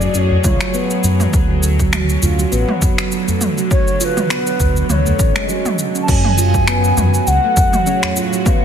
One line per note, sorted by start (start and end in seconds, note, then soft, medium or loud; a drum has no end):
0.00 1.29 A2 medium
0.00 6.05 F#3 loud
0.00 0.13 F#3 medium
0.00 1.29 G#4 medium
0.00 0.14 D5 loud
0.00 shaker soft
0.14 0.38 F#2 loud
0.14 0.43 F#3 medium
0.14 0.19 D5 loud
0.14 shaker soft
0.18 0.43 C#5 loud
0.31 udu medium
0.44 0.57 C#2 loud
0.44 0.54 F4 medium
0.44 0.99 C#5 loud
0.44 kick loud
0.44 mid tom medium
0.44 shaker medium
0.61 0.73 F#3 medium
0.61 finger snap medium
0.61 shaker soft
0.74 1.32 B3 loud
0.74 shaker soft
0.90 shaker soft
1.04 1.27 F#2 medium
1.04 shaker medium
1.20 mid tom medium
1.20 shaker soft
1.33 2.17 D2 medium
1.33 6.05 D3 medium
1.33 3.68 C#4 medium
1.33 kick loud
1.33 shaker soft
1.50 1.62 A3 medium
1.63 shaker medium
1.80 1.91 F#3 medium
1.80 kick medium
1.80 shaker soft
1.93 2.21 F#3 medium
1.93 finger snap medium
1.93 mid tom medium
1.93 shaker soft
2.09 shaker soft
2.22 2.46 D2 medium
2.22 2.32 F4 medium
2.22 udu medium
2.22 shaker medium
2.39 2.51 F#3 medium
2.39 shaker soft
2.52 2.65 A1 medium
2.52 3.10 B3 loud
2.52 shaker soft
2.69 mid tom medium
2.81 kick loud
2.81 udu medium
2.81 shaker medium
2.98 finger snap medium
2.98 shaker soft
3.12 shaker soft
3.28 3.41 A3 medium
3.28 udu medium
3.28 shaker soft
3.41 mid tom medium
3.41 shaker medium
3.58 3.70 F#3 medium
3.58 shaker soft
3.71 3.99 F#3 medium
3.71 4.00 C#5 loud
3.71 kick loud
3.71 shaker soft
3.88 shaker soft
4.00 4.10 F4 medium
4.00 4.89 B4 loud
4.00 4.05 C#5 loud
4.00 shaker medium
4.17 4.29 F#3 medium
4.17 mid tom medium
4.17 shaker soft
4.30 4.88 B3 loud
4.30 finger snap medium
4.30 shaker soft
4.47 shaker soft
4.60 4.83 D2 loud
4.60 kick medium
4.60 udu medium
4.60 shaker medium
4.77 shaker soft
4.90 5.13 D2 medium
4.90 5.75 C#5 loud
4.90 mid tom medium
4.90 shaker soft
5.05 5.19 A3 medium
5.05 udu medium
5.05 shaker soft
5.19 5.32 A1 loud
5.19 5.34 C#4 medium
5.19 kick loud
5.19 shaker medium
5.36 5.48 G#3 loud
5.36 finger snap medium
5.36 shaker soft
5.49 5.64 F#3 loud
5.49 shaker soft
5.65 mid tom medium
5.65 shaker soft
5.79 5.88 F#3 medium
5.79 shaker medium
5.95 6.07 C#4 medium
5.95 shaker soft
6.02 6.10 A5 medium
6.06 6.92 F#2 loud
6.06 8.65 A2 medium
6.06 7.83 F#3 medium
6.06 6.37 F#3 medium
6.06 8.65 F#3 loud
6.06 7.82 A3 medium
6.06 7.83 C#4 medium
6.06 8.65 F#4 medium
6.06 7.84 G#4 medium
6.06 7.84 C#5 medium
6.06 7.29 G#5 loud
6.06 kick loud
6.06 crash loud
6.06 shaker soft
6.25 mid tom medium
6.38 6.47 F4 medium
6.38 shaker medium
6.54 6.67 F#3 medium
6.54 kick medium
6.54 shaker soft
6.67 7.26 B3 loud
6.67 finger snap medium
6.67 shaker soft
6.84 shaker soft
6.97 7.21 F#2 loud
6.97 mid tom medium
6.97 udu medium
6.97 shaker medium
7.14 shaker soft
7.27 7.40 C#2 medium
7.27 8.16 F#5 loud
7.27 shaker soft
7.44 7.56 A3 medium
7.56 kick loud
7.56 udu medium
7.56 shaker medium
7.73 7.85 F#3 medium
7.73 mid tom medium
7.73 shaker soft
7.85 8.15 F#3 medium
7.85 8.42 A3 medium
7.85 8.42 C#4 medium
7.85 8.43 F#4 medium
7.85 8.43 G#4 medium
7.85 8.43 C#5 loud
7.85 shaker soft
8.03 finger snap medium
8.03 udu medium
8.03 shaker soft
8.16 8.26 F4 medium
8.16 shaker medium
8.33 8.45 F#3 medium
8.33 shaker soft
8.44 8.65 F#3 medium
8.44 8.65 G#3 medium
8.44 8.65 A3 medium
8.44 8.65 B3 loud
8.44 8.65 C#4 medium
8.44 8.65 C#5 medium
8.44 8.65 F5 loud
8.44 kick loud
8.44 mid tom medium
8.44 shaker soft